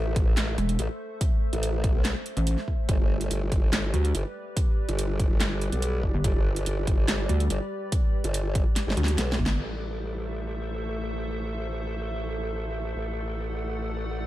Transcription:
Already playing: wobble bass A1, ambient pad A3 A4 C5 E5
0.16 kick, closed hi-hat
0.37 snare, clap, closed hi-hat
0.58 wobble bass E1, closed hi-hat
0.69 closed hi-hat
0.79 wobble bass A1, closed hi-hat
1.21 kick, closed hi-hat
1.53 wobble bass A1, closed hi-hat
1.63 closed hi-hat
1.84 kick, closed hi-hat
1.95 wobble bass B1
2.05 snare, clap, closed hi-hat
2.26 closed hi-hat
2.37 wobble bass A1, closed hi-hat
2.47 closed hi-hat
2.58 snare
2.68 kick
2.89 wobble bass G1, ambient pad G3 G4 B4 D5, kick, closed hi-hat
3.00 wobble bass G1
3.21 closed hi-hat
3.31 wobble bass G1, closed hi-hat
3.52 kick, closed hi-hat
3.73 snare, clap, closed hi-hat
3.94 wobble bass D2, closed hi-hat
4.05 closed hi-hat
4.15 wobble bass G1, closed hi-hat
4.57 kick, closed hi-hat
4.89 wobble bass G1, closed hi-hat
4.99 closed hi-hat
5.20 kick, closed hi-hat
5.31 wobble bass G1
5.41 snare, clap, closed hi-hat
5.62 closed hi-hat
5.72 wobble bass B1, closed hi-hat
5.82 closed hi-hat
6.03 kick
6.14 wobble bass G1
6.24 wobble bass G1, kick, closed hi-hat
6.35 wobble bass G1
6.56 closed hi-hat
6.66 wobble bass G1, closed hi-hat
6.87 kick, closed hi-hat
7.08 snare, clap, closed hi-hat
7.29 wobble bass D2, closed hi-hat
7.40 closed hi-hat
7.50 wobble bass G1, closed hi-hat
7.92 kick, closed hi-hat
8.24 wobble bass G1, closed hi-hat
8.34 closed hi-hat
8.55 kick, closed hi-hat
8.76 snare, closed hi-hat
8.87 wobble bass G1, snare
8.97 wobble bass D2, closed hi-hat
9.04 snare, closed hi-hat
9.18 wobble bass B1, snare, closed hi-hat
9.32 snare
9.39 wobble bass G1, kick
9.46 snare
9.60 wobble bass A1, ambient pad A3 A4 C5 E5, crash
12.96 wobble bass A1, ambient pad D5 F#5

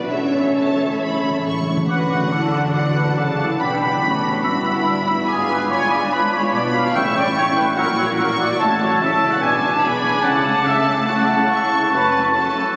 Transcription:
Already playing: double bass section B1, cello section B2, viola section F#4 B4, violin section B4 D5
0.04 french horn section D4
0.11 double bass section A1, timpani A2, cello section A2, french horn section C#4, viola section A4 C#5, violin section E5
0.19 timpani A2
0.27 timpani A2
0.34 timpani A2
0.43 timpani A2
0.50 timpani A2
0.57 timpani A2, violin section A5
0.66 timpani A2
0.74 timpani A2
0.82 timpani A2
0.90 timpani A2
1.02 violin section B5
1.06 timpani A2
1.14 timpani A2
1.22 timpani A2
1.29 timpani A2
1.38 timpani A2
1.46 timpani A2, violin section C#6
1.54 timpani A2
1.61 timpani A2
1.69 timpani A2
1.77 timpani A2
1.88 double bass section D2, cello section D3, french horn section F#3 D4, viola section F#4, violin section F#4 F#5, trumpet section B4, oboe F#5, flute D6
2.10 oboe F#5, flute D6
2.31 viola section E4, trumpet section A4, oboe F#5, flute D6
2.52 viola section D4, oboe F#5, flute D6
2.74 violin section D4 F#5, viola section F#4, trumpet section D5, oboe F#5, flute D6
2.95 trumpet section B4, oboe F#5, flute D6
3.17 double bass section C#2, cello section C#3, viola section F#4, trumpet section A4, oboe F#5, violin section A5, flute D6
3.38 viola section E4, oboe F#5, flute D6
3.60 double bass section B1, cello section B2, french horn section B3, violin section D4 B5, viola section D4, trumpet section G4, oboe B5, flute D6
3.81 oboe B5, violin section B5, flute D6
4.00 double bass section A1, cello section A2, viola section C#4, trumpet section F#4, oboe B5, flute D6
4.23 oboe B5, flute D6
4.44 double bass section G1, cello section G2, viola section B3, violin section E4 B5, french horn section E4, oboe B5, flute E6
4.66 oboe B5, flute E6
4.86 viola section D4, oboe B5, flute E6
5.07 viola section E4, oboe B5, flute E6
5.28 double bass section G#1, cello section G#2, french horn section D4, viola section F4, violin section F4 G#5, trumpet section G#4, oboe B5, flute D6
5.49 trumpet section B4, oboe B5, flute D6
5.69 viola section F4, violin section F4 G#5, trumpet section C#5, oboe B5, flute D6
5.90 trumpet section D5, oboe B5, flute D6
6.12 violin section D4 B5, trumpet section B4, oboe B5, flute D6
6.32 trumpet section C#5, oboe B5, flute D6
6.53 double bass section B1, cello section B2, trumpet section D5, violin section B5, oboe B5, flute D6
6.74 trumpet section F5, oboe B5, flute D6
6.94 double bass section A1, cello section A2, timpani A2, french horn section G3 C#4, viola section C#4, violin section E4 C#6, trumpet section E5, oboe G5, flute C#6
7.15 trumpet section D5, oboe G5, flute C#6
7.36 viola section E4, trumpet section C#5, oboe G5, flute C#6
7.56 trumpet section B4, oboe G5, flute C#6
7.77 double bass section A#1, cello section A#2, french horn section F#3 E4, viola section F#4, violin section F#4 C#6, trumpet section A#4, oboe F#5, flute E6
7.98 trumpet section C#5, oboe F#5, flute E6
8.18 violin section F#4 C#6, trumpet section A#4, oboe F#5, flute E6
8.39 trumpet section D5, oboe F#5, flute E6
8.59 double bass section A1, cello section A2, timpani A2, french horn section A3 E4, viola section F#4, violin section A4 A5, trumpet section C#5, oboe A5, flute E6
9.00 double bass section C#2, cello section C#3, viola section E4, violin section A4 A5, trumpet section E5
9.31 trumpet section F#5
9.41 double bass section B1, cello section B2, french horn section G#3 D4, viola section D4, violin section B4, trumpet section G#5, oboe G#5, flute D6
9.72 trumpet section A5
9.82 viola section D4, violin section G#4 B5, trumpet section G#5
10.24 double bass section C#2, cello section C#3, french horn section A3 E4, viola section C#4, violin section A4 A5, trumpet section F#5, oboe A5
10.46 viola section A3
10.66 violin section A4, trumpet section E5
10.88 trumpet section E5
11.09 french horn section A3 E4, violin section F#4, trumpet section F#5, flute C#6
11.30 violin section E4
11.51 viola section E4, violin section A4 C#6, trumpet section E5
11.93 double bass section F#1, cello section F#2, french horn section A3 F#4, viola section C#4, violin section F#4 A5, trumpet section B4
12.35 viola section C#4, violin section F#4 A5, trumpet section A4

